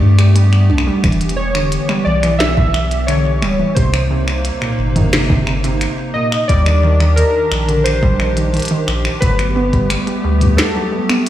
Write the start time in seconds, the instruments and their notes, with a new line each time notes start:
Already playing: analog synth pad A3 B3 G4, synth keys D5
0.01 synth pluck G2, sub bass G2
0.19 synth pluck G4, finger snap, closed hi-hat
0.36 synth pluck G3, closed hi-hat
0.53 finger snap
0.70 sub bass B1, synth pluck D4
0.78 finger snap
0.87 synth pluck G3
1.04 sub bass E1, synth pluck E3, analog synth pad E3, finger snap, kick, closed hi-hat
1.12 closed hi-hat
1.21 closed hi-hat
1.29 closed hi-hat
1.36 synth keys C#5
1.55 synth pluck D3, finger snap
1.72 closed hi-hat
1.89 synth pluck G3, finger snap
2.05 sub bass B1, synth pluck E3, synth keys D5
2.23 synth pluck E3, finger snap, closed hi-hat
2.39 synth pluck E3, synth keys E5, snare, closed hi-hat
2.57 synth pluck E3, kick
2.74 finger snap
2.91 closed hi-hat
3.07 synth pluck D3, synth keys C#5, finger snap, closed hi-hat
3.42 sub bass D1, synth pluck G3, finger snap
3.59 synth pluck E3
3.75 sub bass C2, synth pluck C3, analog synth pad C3 A#3 D#4, synth keys C5, kick, closed hi-hat
3.94 synth pluck C3, finger snap
4.11 synth pluck C3
4.28 finger snap
4.45 closed hi-hat
4.62 synth pluck A#2, finger snap
4.79 sub bass G1
4.96 synth pluck D#3, closed hi-hat, mid tom
5.13 synth pluck C3, finger snap, snare, closed hi-hat
5.30 synth pluck C3, kick
5.47 synth pluck C3, finger snap
5.64 synth pluck C3, closed hi-hat
5.81 finger snap, closed hi-hat
6.14 synth pluck A#2, synth keys D#5
6.32 finger snap
6.48 sub bass D#2, analog synth pad D#3 D4 G4, synth pluck G3, synth keys D5, kick, closed hi-hat
6.66 synth pluck D#3, finger snap
6.83 synth pluck D#3
7.00 synth pluck D#3, finger snap
7.16 synth pluck D#3, synth keys A#4, closed hi-hat
7.52 sub bass A#1, finger snap
7.69 synth pluck D3, closed hi-hat
7.84 synth keys C5, finger snap, closed hi-hat
8.03 synth pluck G3, kick
8.20 synth pluck D#3, finger snap
8.37 synth pluck D#3, closed hi-hat
8.54 synth pluck D#3, closed hi-hat
8.57 closed hi-hat
8.60 closed hi-hat
8.62 closed hi-hat
8.65 closed hi-hat
8.68 synth pluck D#3, closed hi-hat
8.88 sub bass A#1, finger snap
9.05 finger snap
9.21 sub bass G1, synth pluck F#3, analog synth pad A3 B3, synth keys B4, kick, closed hi-hat
9.39 finger snap, closed hi-hat
9.56 synth pluck B3
9.73 synth pluck G3, kick, closed hi-hat
9.90 synth pluck G3, finger snap, closed hi-hat
10.07 synth pluck G3, closed hi-hat
10.24 sub bass D2, synth pluck G3
10.41 closed hi-hat, mid tom
10.57 synth keys A4, finger snap, snare, closed hi-hat
10.75 synth pluck F#3
10.92 synth pluck G3
11.09 synth pluck B3, finger snap, closed hi-hat